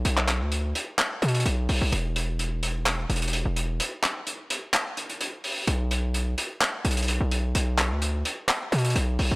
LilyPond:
<<
  \new Staff \with { instrumentName = "808-style bass" } { \clef bass \time 4/4 \key b \minor \tempo 4 = 128 b,,8. d,8. r4 b,8 b,,8 b,,16 b,,16 | e,,2~ e,,8 e,,8. e,,8. | r1 | b,,4. r4 b,,8. b,,8. |
b,,8. d,8. r4 b,8 b,,8 b,,16 b,,16 | }
  \new DrumStaff \with { instrumentName = "Drums" } \drummode { \time 4/4 hh16 hc16 <hc hh>8 hh8 hh8 <hc hh>8 hh32 hh32 hh32 hh32 hh8 hho8 | hh8 hh8 hh8 hh8 <hc hh>8 hh32 hh32 hh32 hh32 hh8 hh8 | hh8 <hc hh>8 hh8 hh8 <hc hh>8 hh16 hh16 hh8 hho8 | hh8 hh8 hh8 hh8 <hc hh>8 hh32 hh32 hh32 hh32 hh8 hh8 |
hh8 <hc hh>8 hh8 hh8 <hc hh>8 hh32 hh32 hh32 hh32 hh8 hho8 | }
>>